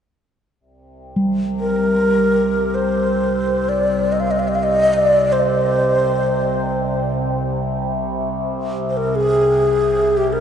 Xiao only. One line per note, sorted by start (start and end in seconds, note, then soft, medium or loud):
1.60 2.76 A#4 medium
2.74 3.70 C5 medium
3.69 4.14 D5 medium
4.12 4.22 D#5 medium
4.20 4.32 F5 medium
4.31 4.41 D#5 medium
4.39 4.49 F5 medium
4.48 4.56 D#5 medium
4.55 4.65 F5 medium
4.63 4.95 D#5 medium
4.93 5.34 D5 medium
5.32 7.14 C5 medium
8.90 8.98 C5 soft
8.97 9.17 A#4 medium
9.15 10.19 G#4 medium
10.17 10.34 G4 medium
10.33 10.40 A#4 medium